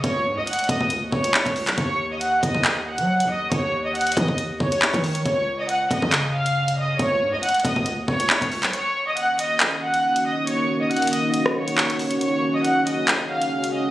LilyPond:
<<
  \new Staff \with { instrumentName = "Violin section" } { \time 4/4 \key ees \minor \tempo 4 = 138 <des'' des'''>8. <ees'' ees'''>16 <ges'' ges'''>8 <ees'' ees'''>8 r8 <des'' des'''>4. | <des'' des'''>8. <ees'' ees'''>16 <ges'' ges'''>8 <ees'' ees'''>4 <ges'' ges'''>4 <ees'' ees'''>8 | <des'' des'''>8. <ees'' ees'''>16 <ges'' ges'''>8 <ees'' ees'''>8 r8 <des'' des'''>4. | <des'' des'''>8. <ees'' ees'''>16 <ges'' ges'''>8 <ees'' ees'''>4 <f'' f'''>4 <ees'' ees'''>8 |
<des'' des'''>8. <ees'' ees'''>16 <ges'' ges'''>8 <ees'' ees'''>8 r8 <des'' des'''>4. | <des'' des'''>8. <ees'' ees'''>16 <ges'' ges'''>8 <ees'' ees'''>4 <ges'' ges'''>4 <ees'' ees'''>8 | <des'' des'''>8. <ees'' ees'''>16 <ges'' ges'''>8 <ees'' ees'''>8 r8 <des'' des'''>4. | <des'' des'''>8. <ees'' ees'''>16 <ges'' ges'''>8 <ees'' ees'''>4 <f'' f'''>4 <ees'' ees'''>8 | }
  \new Staff \with { instrumentName = "Ambient pad" } { \time 4/4 \key ees \minor << { r1 | r1 | r1 | r1 |
r1 | <ees bes ges'>1~ | <ees bes ges'>1 | <des aes'>1 | } \\ { r1 | r1 | r1 | r1 |
r1 | des'1~ | des'1~ | des'1 | } >> }
  \new Staff \with { instrumentName = "808-style bass" } { \clef bass \time 4/4 \key ees \minor des,8 aes,16 des,16 r8 des,16 des,8 ees,16 des,8. des,8 ces,16 | ees,4. ees,16 ees,4 ges8~ ges32 ees,8~ ees,32 | ees,4. ees16 ees,8. ees,8. ees8. | des,4. des,16 des2~ des16 |
des,8 aes,16 des,16 r8 des,16 des,8 ees,16 des,8. des,8 ces,16 | r1 | r1 | r1 | }
  \new DrumStaff \with { instrumentName = "Drums" } \drummode { \time 4/4 <hh bd>4 hh32 hh32 hh32 hh32 <hh bd>16 bd16 hh8 bd16 hh16 hc16 <hh bd>16 hho16 <hc hh>16 | <hh bd>4 hh8 <hh bd>16 bd16 <hc hh>8. hh16 r16 hh8. | <hh bd>4 hh32 hh32 hh32 hh32 <hh bd>16 bd16 hh8 bd16 hh16 hc16 <hh bd>16 hho16 hh16 | <hh bd>4 hh8 <hh bd>16 bd16 <hc hh>8. hh16 r16 hh8. |
<hh bd>4 hh32 hh32 hh32 hh32 <hh bd>16 bd16 hh8 bd16 hh16 hc16 <hh bd>16 hho16 <hc hh>16 | hh4 hh8 hh8 <hc hh>8. hh16 r16 hh8. | hh4 hh32 hh32 hh32 hh32 hh8 hh16 ss8 hh16 hc16 hh16 hho16 hh16 | hh4 hh8 hh8 <hc hh>8. hh16 r16 hh8. | }
>>